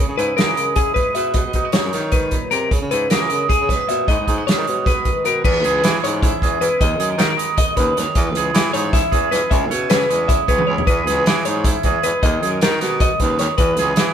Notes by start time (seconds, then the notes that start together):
Already playing: C#3 G#3 B3
0.08 C#3
0.17 G#2 E4 B4, closed hi-hat
0.37 B3 A#4, snare, closed hi-hat
0.46 E3
0.56 C#3 G#3, closed hi-hat
0.76 E4 G#4, kick, closed hi-hat
0.94 G#2 B4, kick, closed hi-hat
1.15 B2 B4 E5, closed hi-hat
1.34 B2 D#5, kick, closed hi-hat
1.46 B2
1.53 B2 D#4, kick, closed hi-hat
1.65 F#4
1.72 D#4 C#5, snare, closed hi-hat
1.84 F#2
1.93 D#3 F#3, snare, closed hi-hat
2.12 G#2 B4, kick, closed hi-hat
2.31 A#2, kick, closed hi-hat
2.51 B2 C3 A#4, closed hi-hat
2.71 C#3, kick, closed hi-hat
2.81 C#3
2.91 G#2 E4 B4, closed hi-hat
3.10 B3 A#4, snare, closed hi-hat
3.20 E3
3.29 C#3 G#3, closed hi-hat
3.49 C#3 G#4, kick, closed hi-hat
3.60 C#3
3.69 B2 B4, kick, snare, closed hi-hat
3.87 A#2 B2 E5, closed hi-hat
4.07 G#2 G#3 B3 F#4 B4 D#5, kick, closed hi-hat
4.19 G#2
4.27 G#2 D#4, kick, closed hi-hat
4.38 F#4
4.47 B3 C#5, snare, closed hi-hat
4.58 D#3
4.67 B2 G#3, closed hi-hat
4.86 F#4 B4, kick, snare, closed hi-hat
5.05 D#3, kick, closed hi-hat
5.25 B2 A#4 B4, closed hi-hat
5.45 E2 E3 B4, kick, crash
5.64 C#2 G#4, closed hi-hat
5.83 E3 E4, snare, closed hi-hat
6.04 G#2 G#3 C#4 C#5, closed hi-hat
6.23 E4 E5, kick, closed hi-hat
6.42 E2 G#4, kick, closed hi-hat
6.60 E2 B2 E4 B4, closed hi-hat
6.80 D#2 D#3 D#5, kick, closed hi-hat
6.99 F#2 G#4, closed hi-hat
7.10 A#4
7.18 D#3 D#4 A#4, snare, closed hi-hat
7.27 F#4
7.37 G#3 B3, closed hi-hat
7.57 B2 D#5, kick, closed hi-hat
7.76 D#2 C#3 B4, kick, closed hi-hat
7.96 D#2 D#3 C#5, snare, closed hi-hat
8.15 E2 E3 B4, kick, closed hi-hat
8.34 C#2 G#4, closed hi-hat
8.53 E3 E4, snare, closed hi-hat
8.74 G#2 G#3 B3 C#5, closed hi-hat
8.83 C#4
8.93 E4 E5, kick, snare, closed hi-hat
9.12 E2 G#4, kick, closed hi-hat
9.31 E2 B2 E4 B4, snare, closed hi-hat
9.50 C#2 C#3 E5, kick, closed hi-hat
9.71 B2 C#5, closed hi-hat
9.90 C#3 E4 B4, snare, closed hi-hat
10.09 E2 G#3 B3, closed hi-hat
10.28 E4 E5, kick, closed hi-hat
10.48 C#2 B4 C#5, kick, closed hi-hat
10.58 high tom
10.67 C#2 G#2 E4 C#5
10.78 floor tom
10.87 E2 E3 B4, kick, closed hi-hat
11.06 C#2 G#4, snare, closed hi-hat
11.26 E3 E4, snare, closed hi-hat
11.45 G#2 G#3 B3 C#5, closed hi-hat
11.55 C#4
11.64 E4 E5, kick, closed hi-hat
11.83 E2 G#4, kick, closed hi-hat
12.03 E2 B2 E4 B4, closed hi-hat
12.23 D#2 D#3 D#5, kick, closed hi-hat
12.42 F#2 G#4, closed hi-hat
12.51 A#4
12.61 D#3 F#4 A#4, snare, closed hi-hat
12.80 B2 G#3 B3, snare, closed hi-hat
13.00 B2 D#5, kick, closed hi-hat
13.20 D#2 C#3 B4, kick, snare, closed hi-hat
13.39 D#2 D#3 C#5, snare, closed hi-hat
13.58 E2 E3 B4, kick, closed hi-hat
13.77 C#2 G#4, snare, closed hi-hat
13.96 E3 E4, snare, closed hi-hat